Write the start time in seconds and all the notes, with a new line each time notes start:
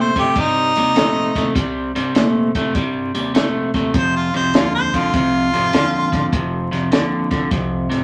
Already playing: C3 A3
0.01 C5
0.16 G2 C3 A3 G4, kick, snare, closed hi-hat
0.36 G2 C3 G3 D#4, kick, closed hi-hat
0.76 D#2 C3 G3, snare, closed hi-hat
0.96 A#1 C3 A3, snare, closed hi-hat
1.35 D#2 C3 A3, kick, snare, closed hi-hat
1.55 C2 C3 G3, kick, snare, closed hi-hat
1.96 G2 C3 G3, snare, closed hi-hat
2.15 A#2 C3 A3, snare, closed hi-hat
2.55 G2 C3 A3, kick, snare, closed hi-hat
2.75 G2 C3 G3, kick, snare, closed hi-hat
3.15 D#2 C3 G3, snare, closed hi-hat
3.34 A#1 C3 A3, snare, closed hi-hat
3.74 D#2 C3 A3, kick, snare, closed hi-hat
3.94 F1 F2 C3, kick, closed hi-hat
3.98 C5
4.17 F4
4.34 C2 F2 C3 C5, snare, closed hi-hat
4.54 D#2 F2 D3 F4, snare, closed hi-hat
4.75 C5
4.93 C2 F2 D3 F4, kick, snare, closed hi-hat
5.13 C2 F2 C3 F4, kick, closed hi-hat
5.53 G#1 F2 C3, snare, closed hi-hat
5.73 D#2 F2 D3, snare, closed hi-hat
6.12 G#1 F2 D3, kick, snare, closed hi-hat
6.32 F1 F2 C3, kick, closed hi-hat
6.71 C2 F2 C3, snare, closed hi-hat
6.91 D#2 F2 D3, snare, closed hi-hat
7.31 C2 F2 D3, kick, snare, closed hi-hat
7.51 C2 F2 C3, kick, snare, closed hi-hat
7.90 G#1 F2 C3, snare, closed hi-hat